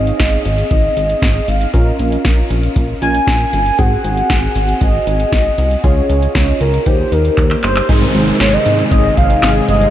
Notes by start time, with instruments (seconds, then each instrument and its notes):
Already playing: analog synth bass G#1, synth keys C4 D#4 G#4, soft synth lead D#5
0.07 closed hi-hat
0.20 analog synth bass G#1, kick, snare, closed hi-hat
0.45 analog synth bass G#1, closed hi-hat
0.58 closed hi-hat
0.71 analog synth bass G#1, soft synth lead D#5, kick, closed hi-hat
0.97 analog synth bass G#1, closed hi-hat
1.09 closed hi-hat
1.22 analog synth bass G#1, kick, snare, closed hi-hat
1.48 analog synth bass G#1, soft synth lead F5, closed hi-hat
1.61 closed hi-hat
1.74 analog synth bass A#1, synth keys C#4 F4 A#4, kick, closed hi-hat
1.99 analog synth bass A#1, closed hi-hat
2.12 closed hi-hat
2.25 analog synth bass A#1, kick, snare, closed hi-hat
2.50 analog synth bass A#1, closed hi-hat
2.63 closed hi-hat
2.76 analog synth bass A#1, kick, closed hi-hat
3.02 analog synth bass A#1, synth keys C#4 F4 A#4, soft synth lead G#5, closed hi-hat
3.15 closed hi-hat
3.27 analog synth bass A#1, kick, snare, closed hi-hat
3.53 analog synth bass G1, closed hi-hat
3.66 closed hi-hat
3.79 analog synth bass G#1, synth keys C4 F#4 G#4, soft synth lead F#5, kick, closed hi-hat
4.04 analog synth bass G#1, closed hi-hat
4.17 closed hi-hat
4.30 analog synth bass G#1, kick, snare, closed hi-hat
4.56 analog synth bass G#1, closed hi-hat
4.68 closed hi-hat
4.81 analog synth bass G#1, soft synth lead D#5, kick, closed hi-hat
5.07 analog synth bass G#1, closed hi-hat
5.20 closed hi-hat
5.32 analog synth bass G#1, kick, snare, closed hi-hat
5.58 analog synth bass C2, closed hi-hat
5.71 closed hi-hat
5.84 analog synth bass C#2, synth keys C#4 F4 G#4, soft synth lead C#5, kick, closed hi-hat
6.10 analog synth bass C#2, closed hi-hat
6.22 closed hi-hat
6.35 analog synth bass C#2, kick, snare, closed hi-hat
6.61 analog synth bass C#2, soft synth lead A#4, closed hi-hat
6.74 closed hi-hat
6.86 analog synth bass D#2, synth keys A#3 D#4 G4, soft synth lead C5, kick, closed hi-hat
7.12 analog synth bass D#2, soft synth lead A#4, closed hi-hat
7.25 closed hi-hat
7.38 analog synth bass D#2, kick, clap, closed hi-hat
7.51 clap
7.63 analog synth bass G1, soft synth lead C5, clap, closed hi-hat
7.76 clap, closed hi-hat
7.89 analog synth bass G#1, analog synth pad C3 D#3 G#3 D#4 G#4, synth keys G#3 C4 D#4 G#4, kick, closed hi-hat, crash, downlifter
8.02 soft synth lead C5
8.15 analog synth bass G#1, closed hi-hat
8.28 closed hi-hat
8.40 analog synth bass G#1, soft synth lead C#5, snare, closed hi-hat
8.53 soft synth lead D#5
8.66 analog synth bass G#2, closed hi-hat
8.79 closed hi-hat
8.91 analog synth bass G#1, soft synth lead D#5, kick, closed hi-hat
9.17 analog synth bass G#1, soft synth lead F5, kick, closed hi-hat
9.30 closed hi-hat
9.43 analog synth bass G#1, snare, clap, closed hi-hat
9.69 analog synth bass G1, soft synth lead D#5, closed hi-hat
9.81 closed hi-hat